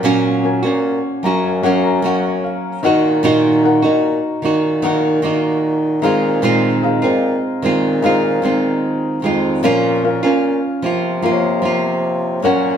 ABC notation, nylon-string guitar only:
X:1
M:4/4
L:1/16
Q:1/4=75
K:Bbm
V:1 name="Nylon-string guitar"
[B,,G,B,DG]3 [B,DG]3 [G,B,DG]2 [G,B,DG]2 [G,B,DG]4 [E,B,EG]2 | [B,,E,B,EG]3 [B,EG]3 [E,B,EG]2 [E,B,EG]2 [E,B,EG]4 [E,A,CF]2 | [B,,E,A,CF]3 [A,CF]3 [E,A,CF]2 [E,A,CF]2 [E,A,CF]4 [E,A,CF]2 | [B,,F,B,DF]3 [B,DF]3 [F,B,F]2 [F,B,F]2 [F,B,F]4 [G,B,DG]2 |]